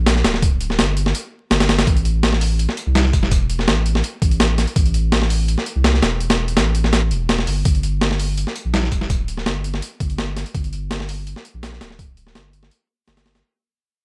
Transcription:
0.00 0.23 A#1 loud
0.06 snare loud
0.06 closed hi-hat medium
0.16 snare soft
0.24 0.80 D1 loud
0.24 snare loud
0.24 closed hi-hat medium
0.34 snare soft
0.42 kick loud
0.42 closed hi-hat medium
0.61 closed hi-hat medium
0.70 snare soft
0.79 1.13 G1 medium
0.79 snare loud
0.79 closed hi-hat medium
0.97 closed hi-hat medium
1.06 snare soft
1.15 closed hi-hat medium
1.51 1.86 G1 loud
1.51 snare loud
1.51 closed hi-hat medium
1.60 snare loud
1.60 closed hi-hat medium
1.69 snare loud
1.69 closed hi-hat medium
1.79 snare loud
1.79 closed hi-hat medium
1.87 2.67 A1 loud
1.87 kick loud
1.87 closed hi-hat medium
1.97 closed hi-hat soft
2.05 closed hi-hat medium
2.23 snare loud
2.23 closed hi-hat medium
2.33 snare medium
2.41 open hi-hat medium
2.59 closed hi-hat medium
2.69 snare soft
2.77 closed hi-hat medium
2.87 3.12 C2 loud
2.95 snare loud
2.95 closed hi-hat medium
3.05 snare soft
3.13 3.69 E1 loud
3.13 kick loud
3.13 closed hi-hat medium
3.23 snare soft
3.31 kick loud
3.31 closed hi-hat medium
3.50 closed hi-hat medium
3.59 snare soft
3.68 4.02 A1 medium
3.68 snare loud
3.68 closed hi-hat medium
3.86 closed hi-hat medium
3.95 snare soft
4.04 closed hi-hat medium
4.22 4.66 A1 medium
4.22 kick loud
4.22 closed hi-hat medium
4.31 closed hi-hat soft
4.40 snare loud
4.40 closed hi-hat medium
4.58 snare soft
4.58 closed hi-hat medium
4.67 closed hi-hat soft
4.76 5.56 A1 loud
4.76 kick loud
4.76 closed hi-hat medium
4.86 closed hi-hat soft
4.94 closed hi-hat medium
5.12 snare loud
5.12 closed hi-hat medium
5.22 snare soft
5.30 open hi-hat medium
5.48 closed hi-hat medium
5.58 snare soft
5.66 closed hi-hat medium
5.76 6.01 C2 loud
5.84 snare loud
5.84 closed hi-hat medium
5.94 snare soft
6.02 6.58 E1 loud
6.02 snare loud
6.02 closed hi-hat medium
6.20 closed hi-hat medium
6.30 snare loud
6.30 closed hi-hat medium
6.48 closed hi-hat medium
6.57 7.13 A1 loud
6.57 snare loud
6.57 closed hi-hat medium
6.75 closed hi-hat medium
6.84 snare soft
6.93 snare loud
6.93 closed hi-hat medium
7.11 7.46 E1 loud
7.11 closed hi-hat medium
7.29 snare loud
7.29 closed hi-hat medium
7.39 snare soft
7.47 7.64 G1 medium
7.47 open hi-hat medium
7.65 8.45 G1 loud
7.65 kick loud
7.65 closed hi-hat medium
7.75 closed hi-hat soft
7.83 closed hi-hat medium
8.01 snare loud
8.01 closed hi-hat medium
8.11 snare soft
8.19 open hi-hat medium
8.38 closed hi-hat medium
8.47 snare soft
8.56 closed hi-hat medium
8.65 8.90 A#1 medium
8.74 snare loud
8.74 closed hi-hat medium
8.83 snare soft
8.92 9.48 D1 loud
8.92 kick medium
8.92 closed hi-hat medium
9.01 snare soft
9.10 kick loud
9.10 closed hi-hat medium
9.28 closed hi-hat medium
9.37 snare soft
9.46 9.81 G1 medium
9.46 snare loud
9.46 closed hi-hat medium
9.64 closed hi-hat medium
9.74 snare soft
9.82 closed hi-hat medium
10.00 10.44 G1 medium
10.00 kick loud
10.00 closed hi-hat medium
10.10 closed hi-hat soft
10.18 snare loud
10.18 closed hi-hat medium
10.37 snare soft
10.37 closed hi-hat medium
10.46 closed hi-hat soft
10.55 11.35 G1 loud
10.55 kick loud
10.55 closed hi-hat medium
10.64 closed hi-hat soft
10.73 closed hi-hat medium
10.91 snare loud
10.91 closed hi-hat medium
11.00 snare soft
11.09 open hi-hat medium
11.27 closed hi-hat medium
11.36 snare soft
11.45 closed hi-hat medium
11.54 11.80 A#1 medium
11.63 snare loud
11.63 closed hi-hat medium
11.73 snare soft
11.81 12.37 D1 loud
11.81 snare loud
11.81 closed hi-hat medium
11.90 snare soft
11.99 kick loud
11.99 closed hi-hat medium
12.17 closed hi-hat medium
12.27 snare soft
12.35 12.70 G1 medium
12.35 snare loud
12.35 closed hi-hat medium
12.53 closed hi-hat medium
12.63 snare soft
12.71 closed hi-hat medium
13.08 13.42 G1 loud
13.08 snare loud
13.08 closed hi-hat medium
13.17 snare loud
13.17 closed hi-hat medium
13.26 snare loud
13.26 closed hi-hat medium
13.35 snare loud
13.35 closed hi-hat medium

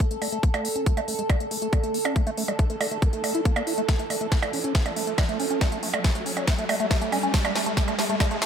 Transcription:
0.00 0.06 A3 medium
0.00 8.46 A4 medium
0.00 kick loud
0.00 closed hi-hat medium
0.00 riser medium
0.11 0.17 A3 medium
0.11 closed hi-hat medium
0.22 0.28 A3 medium
0.22 open hi-hat loud
0.22 percussion blips soft
0.32 0.39 A3 medium
0.32 closed hi-hat medium
0.43 0.49 A#3 medium
0.43 kick loud
0.43 closed hi-hat medium
0.54 0.66 A3 medium
0.54 closed hi-hat medium
0.54 percussion blips medium
0.65 0.69 A#3 medium
0.65 open hi-hat loud
0.76 0.85 C#4 medium
0.76 closed hi-hat medium
0.86 0.93 A3 medium
0.86 kick loud
0.86 closed hi-hat medium
0.97 1.01 A3 loud
0.97 closed hi-hat medium
0.97 percussion blips soft
1.08 1.14 A3 medium
1.08 open hi-hat loud
1.19 1.23 G#3 medium
1.19 closed hi-hat medium
1.30 1.36 A3 medium
1.30 kick loud
1.30 closed hi-hat medium
1.30 percussion blips medium
1.40 1.47 A3 medium
1.40 closed hi-hat medium
1.51 1.57 A3 medium
1.51 open hi-hat loud
1.62 1.68 A3 medium
1.62 closed hi-hat medium
1.73 1.79 A#3 medium
1.73 kick loud
1.73 closed hi-hat medium
1.73 percussion blips soft
1.84 1.96 A3 medium
1.84 closed hi-hat medium
1.94 1.98 A#3 medium
1.94 open hi-hat loud
2.05 2.15 C#4 medium
2.05 closed hi-hat medium
2.05 percussion blips medium
2.16 2.22 A3 medium
2.16 kick loud
2.16 closed hi-hat medium
2.27 2.30 A3 loud
2.27 closed hi-hat medium
2.37 2.44 A3 medium
2.37 open hi-hat loud
2.48 2.52 G#3 medium
2.48 closed hi-hat soft
2.48 percussion blips soft
2.59 2.65 A3 medium
2.59 kick loud
2.59 closed hi-hat medium
2.70 2.76 A3 medium
2.70 closed hi-hat soft
2.81 2.87 A3 medium
2.81 open hi-hat loud
2.81 percussion blips medium
2.91 2.98 A3 medium
2.91 closed hi-hat soft
3.02 3.09 A#3 medium
3.02 kick loud
3.02 closed hi-hat medium
3.13 3.22 A3 medium
3.13 closed hi-hat medium
3.24 3.33 A3 medium
3.24 open hi-hat loud
3.24 percussion blips soft
3.35 3.41 E4 medium
3.35 closed hi-hat soft
3.45 3.52 A#3 medium
3.45 kick loud
3.45 closed hi-hat medium
3.56 3.62 A#3 medium
3.56 closed hi-hat medium
3.56 percussion blips medium
3.67 3.73 E4 medium
3.67 open hi-hat loud
3.78 3.82 A3 medium
3.78 closed hi-hat medium
3.89 3.95 A3 medium
3.89 kick loud
3.89 snare medium
3.89 closed hi-hat medium
3.99 4.06 A3 medium
3.99 closed hi-hat soft
4.10 4.16 A3 medium
4.10 open hi-hat loud
4.10 percussion blips soft
4.21 4.27 A3 medium
4.21 closed hi-hat soft
4.32 4.38 A3 medium
4.32 kick loud
4.32 snare soft
4.32 closed hi-hat medium
4.43 4.52 A3 medium
4.43 closed hi-hat soft
4.43 percussion blips medium
4.53 4.60 C#4 medium
4.53 open hi-hat loud
4.64 4.73 C#4 medium
4.64 closed hi-hat medium
4.75 4.81 A3 medium
4.75 kick loud
4.75 snare medium
4.75 closed hi-hat medium
4.86 4.92 A3 medium
4.86 closed hi-hat medium
4.86 percussion blips soft
4.96 5.03 A3 medium
4.96 open hi-hat loud
5.07 5.14 A3 medium
5.07 closed hi-hat medium
5.18 5.24 A3 medium
5.18 kick loud
5.18 snare medium
5.18 closed hi-hat medium
5.18 percussion blips medium
5.29 5.38 A3 medium
5.29 closed hi-hat medium
5.40 5.46 C#4 medium
5.40 open hi-hat loud
5.50 5.59 C#4 medium
5.50 closed hi-hat soft
5.61 5.67 A3 medium
5.61 kick loud
5.61 snare medium
5.61 closed hi-hat medium
5.61 percussion blips soft
5.72 5.78 A3 medium
5.72 closed hi-hat medium
5.83 5.89 A3 medium
5.83 open hi-hat loud
5.94 6.00 A3 medium
5.94 closed hi-hat medium
5.94 percussion blips medium
6.04 6.11 A3 medium
6.04 kick loud
6.04 snare medium
6.04 closed hi-hat medium
6.15 6.25 A3 medium
6.15 closed hi-hat medium
6.26 6.32 C#4 medium
6.26 open hi-hat loud
6.37 6.46 C#4 medium
6.37 closed hi-hat medium
6.37 percussion blips soft
6.48 6.54 A3 medium
6.48 kick loud
6.48 snare medium
6.48 closed hi-hat medium
6.58 6.65 A3 medium
6.58 closed hi-hat medium
6.69 6.75 A3 medium
6.69 open hi-hat loud
6.69 percussion blips medium
6.80 6.86 A3 medium
6.80 closed hi-hat medium
6.91 6.97 A3 medium
6.91 kick loud
6.91 snare medium
6.91 closed hi-hat medium
7.01 7.11 A3 medium
7.01 closed hi-hat medium
7.12 7.19 C#4 medium
7.12 open hi-hat loud
7.12 percussion blips soft
7.23 7.32 C#4 medium
7.23 closed hi-hat medium
7.34 7.40 A3 medium
7.34 kick loud
7.34 snare medium
7.34 closed hi-hat medium
7.45 7.51 A3 medium
7.45 closed hi-hat medium
7.45 percussion blips medium
7.55 7.62 A3 medium
7.55 snare medium
7.55 open hi-hat loud
7.66 7.73 A3 medium
7.66 closed hi-hat medium
7.77 7.83 A3 medium
7.77 kick loud
7.77 snare medium
7.77 closed hi-hat medium
7.88 7.94 A3 medium
7.88 closed hi-hat medium
7.88 percussion blips soft
7.99 8.05 A3 medium
7.99 snare medium
7.99 open hi-hat loud
8.09 8.16 A3 medium
8.09 closed hi-hat medium
8.20 8.26 A3 medium
8.20 kick loud
8.20 snare medium
8.20 closed hi-hat medium
8.20 percussion blips medium
8.31 8.37 A3 medium
8.31 closed hi-hat medium
8.42 8.46 A3 medium
8.42 snare medium
8.42 open hi-hat loud

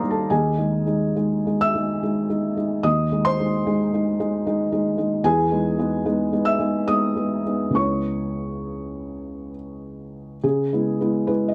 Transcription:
0.00 0.03 G3 soft
0.00 0.28 G3 soft
0.00 0.03 A#3 soft
0.00 0.28 A#3 soft
0.00 0.04 D#4 soft
0.00 0.28 D#4 soft
0.00 0.33 A#4 medium
0.00 0.32 C5 medium
0.00 0.32 D5 medium
0.00 0.32 D#5 medium
0.00 0.32 F5 medium
0.00 0.32 G5 medium
0.00 0.32 A#5 medium
0.00 0.33 C6 medium
0.00 0.32 D6 medium
0.00 0.32 D#6 medium
0.00 0.32 F6 medium
0.00 0.32 G6 medium
0.10 0.30 A4 soft
0.10 0.31 A5 medium
0.30 0.57 D#2 medium
0.30 0.57 D#3 medium
0.30 1.57 G#4 medium
0.30 1.61 G#5 medium
0.58 0.84 G#3 soft
0.58 0.84 D#4 soft
0.86 1.13 G#3 soft
0.86 1.13 D#4 medium
1.16 1.43 G#3 soft
1.16 1.43 D#4 medium
1.47 1.72 G#3 soft
1.47 1.73 D#4 medium
1.61 2.81 E5 medium
1.61 2.85 E6 loud
1.75 2.00 G#3 soft
1.75 2.00 D#4 medium
2.03 2.27 G#3 medium
2.03 2.27 D#4 medium
2.30 2.54 G#3 soft
2.30 2.54 D#4 soft
2.57 2.81 G#3 soft
2.57 2.82 D#4 medium
2.83 3.10 D#2 medium
2.83 3.11 D#3 medium
2.83 3.22 D#5 medium
2.83 3.25 D#6 medium
3.12 3.36 G#3 medium
3.12 3.36 D#4 medium
3.25 5.21 C5 medium
3.25 5.24 C6 loud
3.39 3.63 G#3 medium
3.39 3.64 D#4 medium
3.66 3.90 G#3 medium
3.66 3.90 D#4 medium
3.94 4.17 G#3 medium
3.94 4.17 D#4 medium
4.20 4.43 G#3 medium
4.20 4.43 D#4 medium
4.47 4.70 G#3 medium
4.47 4.70 D#4 medium
4.72 4.96 G#3 medium
4.72 4.95 D#4 medium
4.98 5.22 G#3 medium
4.98 5.22 D#4 medium
5.24 5.50 E2 medium
5.24 5.50 E3 medium
5.24 6.43 G#4 medium
5.24 6.47 G#5 loud
5.51 5.76 G#3 medium
5.51 5.76 B3 medium
5.51 5.76 D#4 medium
5.79 6.03 G#3 medium
5.79 6.03 B3 medium
5.79 6.03 D#4 medium
6.05 6.30 G#3 medium
6.05 6.30 B3 medium
6.05 6.30 D#4 medium
6.32 6.57 G#3 soft
6.32 6.58 B3 medium
6.32 6.58 D#4 medium
6.45 6.85 E5 medium
6.45 6.88 E6 loud
6.59 6.85 G#3 medium
6.59 6.85 B3 medium
6.59 6.86 D#4 medium
6.88 7.14 G#3 soft
6.88 7.14 B3 soft
6.88 7.14 D#4 medium
6.88 7.72 D#5 medium
6.88 7.76 D#6 loud
7.16 7.43 G#3 soft
7.16 7.43 B3 soft
7.16 7.43 D#4 soft
7.46 7.70 G#3 soft
7.46 7.71 B3 soft
7.46 7.73 D#4 soft
7.70 10.38 C#2 medium
7.70 10.36 C#3 medium
7.70 10.37 G#3 soft
7.70 10.37 B3 soft
7.70 10.38 E4 soft
7.75 9.50 C#5 medium
7.75 9.54 C#6 medium
10.44 10.71 C#3 medium
10.44 11.28 G#4 medium
10.73 10.98 G#3 soft
10.73 10.98 B3 soft
10.73 10.98 E4 soft
11.01 11.26 G#3 medium
11.01 11.26 B3 soft
11.01 11.26 E4 medium
11.27 11.53 G#3 soft
11.27 11.53 B3 soft
11.27 11.53 E4 soft
11.27 11.48 B4 medium
11.48 11.54 D#5 medium

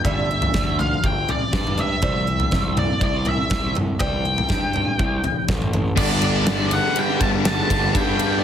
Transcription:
0.04 0.45 G1 medium
0.04 0.28 G2 medium
0.04 0.28 D3 medium
0.04 0.28 G3 medium
0.04 0.79 E5 medium
0.04 kick medium
0.04 floor tom medium
0.42 floor tom medium
0.54 0.94 D2 medium
0.54 0.76 G2 medium
0.54 0.76 D3 medium
0.54 kick medium
0.54 snare medium
0.54 mid tom medium
0.79 1.01 G2 medium
0.79 1.02 D3 medium
0.79 1.05 F5 medium
0.79 floor tom medium
1.03 1.23 G1 medium
1.03 1.26 G2 medium
1.03 1.26 D3 medium
1.03 1.30 G5 medium
1.03 kick medium
1.28 1.50 G2 medium
1.28 1.51 D3 medium
1.28 1.80 D5 medium
1.28 floor tom medium
1.53 1.75 G2 medium
1.53 1.93 G2 medium
1.53 1.75 D3 medium
1.53 kick medium
1.53 snare medium
1.53 floor tom medium
1.67 mid tom medium
1.78 2.00 G2 medium
1.78 2.00 D3 medium
1.78 2.78 E5 medium
1.78 mid tom medium
2.02 2.43 C2 medium
2.02 2.25 C3 medium
2.02 2.25 E3 medium
2.02 2.26 G3 medium
2.02 kick medium
2.02 floor tom medium
2.27 2.49 C3 medium
2.27 2.50 E3 medium
2.40 floor tom medium
2.51 2.92 C2 medium
2.51 2.74 C3 medium
2.51 2.74 E3 medium
2.51 kick medium
2.51 snare medium
2.51 mid tom medium
2.77 2.99 C3 medium
2.77 2.99 E3 medium
2.77 3.03 D5 medium
2.77 floor tom medium
2.77 mid tom medium
3.01 3.41 C2 medium
3.01 3.24 C3 medium
3.01 3.24 E3 medium
3.01 3.28 D5 medium
3.01 kick medium
3.25 3.48 C3 medium
3.25 3.48 E3 medium
3.25 3.73 E5 medium
3.25 floor tom medium
3.50 3.91 C2 medium
3.50 3.73 C3 medium
3.50 3.73 E3 medium
3.50 kick loud
3.50 snare medium
3.50 floor tom medium
3.75 3.98 C3 medium
3.75 3.98 E3 medium
3.75 mid tom medium
3.99 4.41 C2 medium
3.99 4.23 C3 medium
3.99 4.23 E3 medium
3.99 4.24 G3 medium
3.99 5.44 G5 loud
3.99 kick medium
3.99 floor tom medium
4.25 4.47 C3 medium
4.25 4.47 E3 medium
4.38 floor tom medium
4.49 4.90 G2 medium
4.49 4.71 C3 medium
4.49 4.71 E3 medium
4.49 kick medium
4.49 snare medium
4.49 mid tom medium
4.73 4.96 C3 medium
4.73 4.96 E3 medium
4.73 floor tom medium
4.99 5.19 C2 medium
4.99 5.21 C3 medium
4.99 5.21 E3 medium
4.99 kick medium
5.24 5.46 C3 medium
5.24 5.46 E3 medium
5.24 floor tom medium
5.48 5.89 A1 medium
5.48 5.71 C3 medium
5.48 5.71 E3 medium
5.48 kick loud
5.48 snare medium
5.48 floor tom medium
5.62 mid tom medium
5.73 5.95 C3 medium
5.73 5.95 E3 medium
5.73 mid tom medium
5.96 6.78 G1 loud
5.96 7.43 G2 medium
5.96 6.45 D3 medium
5.96 6.23 G3 medium
5.96 6.22 B3 loud
5.96 6.20 D4 loud
5.96 6.23 D5 medium
5.96 kick loud
5.96 crash loud
6.21 6.46 G3 medium
6.21 6.47 B3 medium
6.21 6.48 D4 medium
6.21 ride medium
6.25 6.74 D5 medium
6.46 7.43 D3 medium
6.46 7.22 G3 medium
6.46 7.20 B3 medium
6.46 7.20 D4 medium
6.46 snare loud
6.46 ride loud
6.70 7.45 G3 medium
6.70 7.45 B3 medium
6.70 7.46 D4 medium
6.70 6.98 F#5 medium
6.70 snare soft
6.70 ride medium
6.96 7.21 G5 loud
6.96 ride medium
7.20 7.61 G1 medium
7.20 7.45 G3 medium
7.20 7.44 B3 medium
7.20 7.46 D4 medium
7.20 7.28 A5 loud
7.20 kick medium
7.20 ride medium
7.44 7.92 G2 loud
7.44 7.93 D3 loud
7.44 7.70 G3 loud
7.44 7.68 B3 loud
7.44 7.67 D4 loud
7.44 7.97 A5 loud
7.44 snare loud
7.44 ride loud
7.68 7.90 G1 medium
7.68 7.94 G3 medium
7.68 7.94 B3 medium
7.68 7.95 D4 medium
7.68 kick medium
7.68 ride medium
7.94 8.43 G2 loud
7.94 8.44 G2 medium
7.94 8.42 D3 medium
7.94 8.21 G3 loud
7.94 8.19 B3 loud
7.94 8.18 D4 medium
7.94 8.40 G5 loud
7.94 kick loud
7.94 ride loud
8.18 8.44 G3 medium
8.18 8.44 B3 medium
8.18 8.44 D4 medium
8.18 ride medium
8.38 8.44 D5 medium

